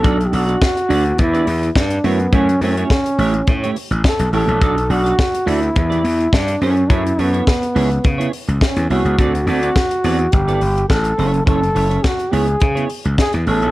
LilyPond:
<<
  \new Staff \with { instrumentName = "Clean electric guitar" } { \time 4/4 \key b \minor \tempo 4 = 105 <d' fis' a' d''>16 r16 <d' fis' a' d''>16 <d' fis' a' d''>16 r8 <d' fis' a' d''>16 r8 <d' g' b' d''>16 r4 <a e' fis' cis''>16 r16 | <a e' fis' cis''>16 r16 <a e' fis' cis''>16 <a e' fis' cis''>16 r8 <a e' g' cis''>16 r8 <a e' g' cis''>16 r4 <a e' g' cis''>16 <a e' g' cis''>16 | <d' fis' a' d''>16 r16 <d' fis' a' d''>16 <d' fis' a' d''>16 r8 <d' fis' a' d''>16 r8 <b e' g' d''>16 r4 <cis' e' a' cis''>16 r16 | <cis' e' a' cis''>16 r16 <cis' e' a' cis''>16 <cis' e' a' cis''>16 r8 <b e' gis' cis''>16 r8 <b e' gis' cis''>16 r4 <b e' gis' cis''>16 <b e' gis' cis''>16 |
<c' fis' a' d''>16 r16 <c' fis' a' d''>16 <c' fis' a' d''>16 r8 <c' fis' a' d''>16 r8 <b e' a' d''>16 r4 <cis' e' a' cis''>16 r16 | <cis' e' a' cis''>16 r16 <cis' e' a' cis''>16 <cis' e' a' cis''>16 r8 <b e' gis' cis''>16 r8 <b e' gis' cis''>16 r4 <b e' gis' cis''>16 <b e' gis' cis''>16 | }
  \new Staff \with { instrumentName = "Trombone" } { \time 4/4 \key b \minor a'16. g'32 fis'4. e'4 d'8 b8 | cis'8 cis'2 r8 a'8 a'8~ | a'8 fis'4 e'4. d'8 cis'8 | e'8 b2 r8 cis'8 fis'8~ |
fis'8 fis'4. g'4 a'4 | a'4 fis'8 gis'4 r8 gis'8 a'8 | }
  \new Staff \with { instrumentName = "Slap bass" } { \clef bass \time 4/4 \key b \minor b,,8 b,,8 r8 d,8 e,8 e,8 g,8 fis,8 | fis,8 fis,8 r8 a,,8 a,8 r16 a,,16 r16 b,,16 a,,16 ais,,16 | b,,8 b,,8 r8 d,8 e,8 e,8 g,8 fis,8 | fis,8 fis,8 r8 cis,8 cis8 r16 cis,16 r16 e,16 c,16 cis,16 |
d,8 d,8 r8 e,8 g,,8 g,,8 a,,8 fis,,8 | fis,,8 fis,,8 r8 cis,8 cis8 r16 cis,16 r16 e,16 a,,16 ais,,16 | }
  \new DrumStaff \with { instrumentName = "Drums" } \drummode { \time 4/4 <hh bd>16 hh16 hho16 hh16 <hh bd sn>16 hh16 hho16 hh16 <hh bd>16 hh16 hho16 hh16 <hh bd sn>16 hh16 hho16 hh16 | <hh bd>16 hh16 hho16 hh16 <hh bd sn>16 hh16 hho16 hh16 <hh bd>16 hh16 hho16 hh16 <hh bd sn>16 hh16 hho16 hh16 | <hh bd>16 hh16 hho16 hh16 <hh bd sn>16 hh16 hho16 hh16 <hh bd>16 hh16 hho16 hh16 <hh bd sn>16 hh16 hho16 hh16 | <hh bd>16 hh16 hho16 hh16 <hh bd sn>16 hh16 hho16 hh16 <hh bd>16 hh16 hho16 hh16 <hh bd sn>16 hh16 hho16 hh16 |
<hh bd>16 hh16 hho16 hh16 <hh bd sn>16 hh16 hho16 hh16 <hh bd>16 hh16 hho16 hh16 <hh bd sn>16 hh16 hho16 hh16 | <hh bd>16 hh16 hho16 hh16 <hh bd sn>16 hh16 hho16 hh16 <hh bd>16 hh16 hho16 hh16 <hh bd sn>16 hh16 hho16 hh16 | }
>>